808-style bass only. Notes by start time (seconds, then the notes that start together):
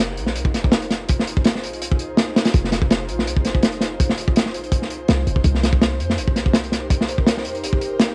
Already playing: F1
0.18 A#1
0.36 C2
0.54 F1
1.63 A#1
1.81 C2
2.36 F1
2.54 F1
3.09 A#1
3.27 C2
3.45 F1
4.54 A#1
4.72 C2
5.09 C2
5.27 F1
5.44 C2
6.00 F2
6.18 G1
6.36 C2
7.45 F2
7.63 G1